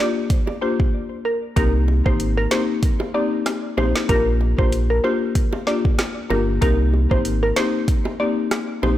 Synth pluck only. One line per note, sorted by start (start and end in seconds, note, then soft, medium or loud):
0.62 0.73 C5 medium
1.25 1.36 A#4 medium
1.57 1.76 A#4 medium
2.06 2.14 C5 medium
2.37 2.46 A#4 medium
2.51 2.62 C5 medium
3.15 3.25 D5 medium
3.78 3.89 C5 medium
4.09 4.29 A#4 loud
4.59 4.67 C5 medium
4.90 4.99 A#4 medium
5.04 5.15 C5 medium
5.67 5.78 D5 medium
6.30 6.41 A#4 medium
6.62 6.81 A#4 medium
7.11 7.20 C5 medium
7.43 7.51 A#4 medium
7.57 7.68 C5 medium
8.20 8.31 D5 medium
8.83 8.94 C5 medium